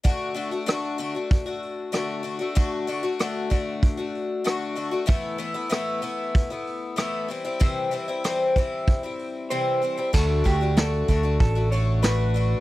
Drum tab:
CC |--------|--------|--------|--------|
HH |oooooooo|oooooooo|oooooooo|oooooo--|
SD |--r---r-|--r---r-|--r---r-|--r-----|
BD |o---o---|o--oo---|o---o---|o--oo---|

CC |x-------|
HH |-ooooooo|
SD |--o---o-|
BD |oo-oo---|